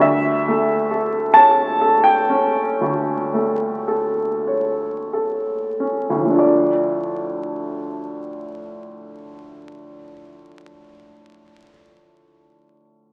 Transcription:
0.00 2.72 D2 medium
0.00 1.34 E5 medium
0.48 1.18 A3 soft
0.91 1.63 A4 soft
1.34 2.10 C#5 soft
1.34 2.04 A5 medium
1.81 2.59 A4 soft
2.04 5.45 G5 medium
2.30 3.11 C#4 soft
2.81 6.08 D2 soft
3.34 4.23 A3 soft
3.88 4.85 A4 soft
4.47 5.53 C#5 soft
5.13 6.19 A4 soft
5.80 6.41 C#4 soft
6.10 9.69 D2 soft
6.14 9.74 A2 soft
6.20 9.80 F3 soft
6.26 9.85 A3 soft
6.30 9.90 D4 soft
6.36 9.95 F4 soft
6.36 9.98 D5 soft

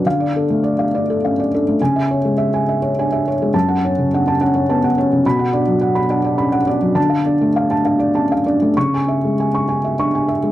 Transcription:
0.06 1.76 D3 soft
0.06 0.29 F5 medium
0.20 0.44 D5 soft
0.36 0.82 D4 soft
0.36 0.59 A4 soft
0.50 0.73 A3 soft
0.63 0.87 D5 soft
0.79 1.02 F5 soft
0.95 1.40 D4 soft
0.95 1.17 D5 soft
1.10 1.32 A4 soft
1.24 1.52 C#4 soft
1.24 1.46 F5 soft
1.40 1.61 D5 soft
1.54 1.81 D4 soft
1.54 1.76 A4 soft
1.68 1.81 A3 soft
1.82 3.51 C#3 soft
1.82 2.04 G#5 medium
1.96 2.18 E5 soft
2.11 2.33 C#5 soft
2.25 2.47 G#3 soft
2.38 2.61 E5 soft
2.54 2.76 G#5 soft
2.69 2.91 E5 soft
2.82 3.05 C#5 soft
2.99 3.26 D4 soft
2.99 3.21 G#5 soft
3.12 3.34 E5 soft
3.28 3.49 C#5 soft
3.42 3.55 G#3 soft
3.53 5.20 F#2 medium
3.53 3.76 A5 medium
3.69 3.91 F#5 soft
3.85 4.29 C#4 soft
3.85 4.06 C#5 soft
3.99 4.20 C#3 soft
4.14 4.41 D4 soft
4.14 4.35 F#5 soft
4.28 4.49 A5 medium
4.41 4.86 C#4 soft
4.41 4.63 F#5 medium
4.54 4.77 C#5 soft
4.69 4.97 B3 soft
4.69 4.91 A5 medium
4.84 5.06 F#5 soft
4.98 5.25 C#4 soft
4.98 5.20 C#5 soft
5.13 5.26 C#3 soft
5.26 6.94 B2 medium
5.26 5.48 B5 medium
5.39 5.62 F#5 soft
5.53 5.99 D4 soft
5.53 5.76 D5 soft
5.68 5.90 F#3 soft
5.81 6.04 F#5 soft
5.95 6.18 B5 medium
6.10 6.56 D4 soft
6.10 6.33 F#5 soft
6.24 6.48 D5 soft
6.38 6.67 C#4 soft
6.38 6.62 B5 medium
6.52 6.76 F#5 soft
6.67 6.97 D4 soft
6.67 6.91 D5 soft
6.81 6.96 F#3 soft
6.95 8.70 D3 medium
6.95 7.19 A5 medium
7.10 7.34 F5 soft
7.25 7.73 D4 soft
7.25 7.49 D5 soft
7.41 7.65 A3 soft
7.56 7.79 F5 medium
7.71 7.94 A5 medium
7.85 8.33 D4 soft
7.85 8.09 F5 soft
7.99 8.23 D5 soft
8.15 8.45 C#4 soft
8.15 8.39 A5 soft
8.32 8.55 F5 soft
8.46 8.76 D4 soft
8.46 8.70 D5 soft
8.62 8.76 A3 soft
8.77 10.52 C#3 medium
8.77 9.01 C#6 medium
8.94 9.17 G#5 soft
9.08 9.32 E5 soft
9.25 9.48 G#3 soft
9.40 9.63 G#5 soft
9.55 9.78 C#6 soft
9.69 9.92 G#5 soft
9.84 10.08 E5 soft
9.99 10.29 D4 soft
9.99 10.23 C#6 soft
10.15 10.38 G#5 soft
10.28 10.52 E5 soft
10.43 10.52 G#3 soft

